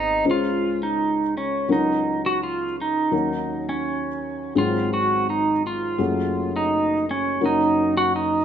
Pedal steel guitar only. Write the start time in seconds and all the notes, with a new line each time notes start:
Already playing: D#4
0.31 F4
0.83 D#4
1.37 C#4
1.73 D#4
2.26 F#4
2.43 F4
2.82 D#4
3.69 C#4
4.58 F4
4.94 F#4
5.30 D#4
5.67 F4
6.56 D#4
7.11 C#4
7.46 D#4
7.97 F#4
8.16 D#4